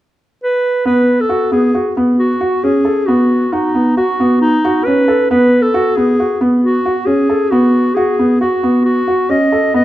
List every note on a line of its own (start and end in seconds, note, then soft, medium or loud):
0.44 0.84 B4 medium
0.85 1.18 B3 medium
0.85 1.22 B4 medium
1.21 1.52 A4 medium
1.29 1.46 F#4 medium
1.52 1.68 B3 medium
1.52 1.93 G#4 medium
1.74 1.91 F#4 soft
1.97 2.30 B3 medium
2.19 2.65 F#4 medium
2.41 2.57 F#4 medium
2.64 2.80 C#4 medium
2.64 3.08 G#4 medium
2.85 3.02 A4 soft
3.06 3.41 B3 medium
3.06 3.54 F#4 medium
3.52 3.97 D#4 medium
3.52 3.69 F#4 medium
3.75 3.91 B3 soft
3.97 4.13 F#4 medium
3.97 4.38 F#4 medium
4.20 4.53 B3 medium
4.42 4.86 D#4 medium
4.65 4.81 F#4 medium
4.85 5.03 C#4 medium
4.85 5.30 B4 medium
5.08 5.24 A4 medium
5.31 5.64 B3 medium
5.31 5.64 B4 medium
5.62 5.98 A4 medium
5.74 5.91 F#4 medium
5.96 6.13 B3 soft
5.96 6.41 G#4 medium
6.20 6.36 F#4 soft
6.41 6.74 B3 medium
6.63 7.07 F#4 medium
6.85 7.02 F#4 medium
7.06 7.24 C#4 medium
7.06 7.53 G#4 medium
7.29 7.46 A4 soft
7.51 7.85 B3 medium
7.51 7.96 F#4 medium
7.95 8.13 F#4 medium
7.95 8.40 G#4 medium
8.19 8.36 B3 medium
8.41 8.58 F#4 soft
8.41 8.83 F#4 medium
8.63 8.97 B3 medium
8.85 9.32 F#4 medium
9.07 9.24 F#4 medium
9.29 9.46 C#4 medium
9.29 9.75 D#5 medium
9.52 9.69 A4 medium
9.74 9.85 B3 medium
9.74 9.85 D#5 medium